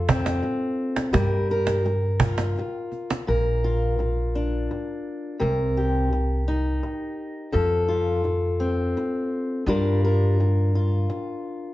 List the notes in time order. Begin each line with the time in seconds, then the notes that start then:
Already playing: F2 F4 A4
0.09 C4, cajon bass
0.26 cajon slap
0.42 muted steel-string acoustic guitar stroke
0.96 cajon slap
1.13 G2 G3 A#4, cajon bass, cajon slap
1.49 A#4, cajon slap
1.67 cajon slap
1.84 muted steel-string acoustic guitar stroke, cajon slap
2.20 F4, cajon bass
2.38 cajon slap
2.56 muted steel-string acoustic guitar stroke, cajon slap
2.92 cajon slap
3.10 cajon slap
3.27 A#1 A#2 A#4
3.64 F4
3.99 muted steel-string acoustic guitar stroke
4.35 D4
4.71 muted steel-string acoustic guitar stroke
5.39 C2 C3 A#4
5.77 G4
6.13 muted steel-string acoustic guitar stroke
6.48 D#4
6.83 muted steel-string acoustic guitar stroke
7.52 F2 F3 A4
7.88 F4
8.24 muted steel-string acoustic guitar stroke
8.60 C4
8.97 muted steel-string acoustic guitar stroke
9.66 G2 G3 D4 F4 A#4
10.04 A#4
10.40 muted steel-string acoustic guitar stroke
10.75 F4
11.10 muted steel-string acoustic guitar stroke